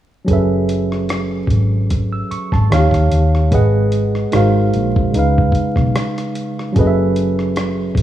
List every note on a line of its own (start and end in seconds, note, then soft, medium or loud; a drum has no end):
0.25 1.46 F#1 medium
0.25 2.65 F#3 medium
0.25 2.66 C#4 medium
0.25 2.67 G#4 soft
0.25 kick medium
0.25 closed hi-hat medium
0.30 2.68 A4 soft
0.30 2.69 B4 soft
0.30 2.70 E5 medium
0.69 closed hi-hat medium
0.92 cross-stick soft
1.09 cross-stick medium
1.09 closed hi-hat medium
1.47 2.21 G#1 medium
1.47 kick medium
1.47 closed hi-hat medium
1.90 kick medium
1.90 closed hi-hat medium
2.13 2.30 E6 soft
2.31 2.51 C#6 medium
2.31 muted fingered electric bass stroke soft
2.31 closed hi-hat medium
2.52 2.69 G#1 medium
2.52 2.91 A5 medium
2.52 kick medium
2.52 cross-stick soft
2.70 2.91 D#2 medium
2.70 3.51 D#3 medium
2.70 3.52 D#4 medium
2.70 2.78 F4 soft
2.70 3.53 C#5 medium
2.70 cross-stick medium
2.70 closed hi-hat medium
2.74 3.53 F5 medium
2.78 3.56 G4 medium
2.91 3.09 D#2 medium
2.91 kick medium
2.91 cross-stick soft
2.91 closed hi-hat soft
3.11 3.48 D#2 medium
3.11 closed hi-hat medium
3.35 cross-stick soft
3.51 4.25 G#1 medium
3.51 4.31 G#3 medium
3.51 4.33 G#4 soft
3.51 4.34 B4 medium
3.51 4.34 D#5 medium
3.51 4.35 F#5 medium
3.51 kick loud
3.51 closed hi-hat medium
3.92 closed hi-hat medium
4.15 cross-stick soft
4.32 4.70 G#1 medium
4.32 5.11 G#3 medium
4.32 5.14 D#4 medium
4.32 5.14 F#4 medium
4.32 5.15 A#4 medium
4.32 5.15 C5 medium
4.32 cross-stick medium
4.32 closed hi-hat medium
4.36 5.16 F5 medium
4.73 5.10 A#1 medium
4.73 closed hi-hat soft
4.96 kick medium
5.11 6.71 C#3 medium
5.11 6.72 G#3 soft
5.11 closed hi-hat medium
5.15 5.51 C#2 medium
5.15 6.73 D#4 medium
5.15 6.75 B4 medium
5.15 6.75 F5 medium
5.38 kick medium
5.52 kick medium
5.52 closed hi-hat soft
5.76 5.93 B1 medium
5.76 kick medium
5.76 cross-stick soft
5.96 cross-stick medium
5.96 closed hi-hat medium
6.18 cross-stick soft
6.18 closed hi-hat soft
6.35 closed hi-hat medium
6.59 cross-stick soft
6.72 8.02 F#3 medium
6.72 8.02 C#4 medium
6.72 8.02 G#4 medium
6.72 kick loud
6.72 closed hi-hat medium
6.76 7.94 F#1 medium
6.76 8.02 A4 medium
6.76 8.02 B4 medium
6.81 6.85 D#5 medium
6.87 8.02 E5 medium
7.16 closed hi-hat medium
7.39 cross-stick soft
7.56 cross-stick medium
7.56 closed hi-hat medium
7.95 8.02 G#1 medium
7.95 kick medium
7.95 closed hi-hat medium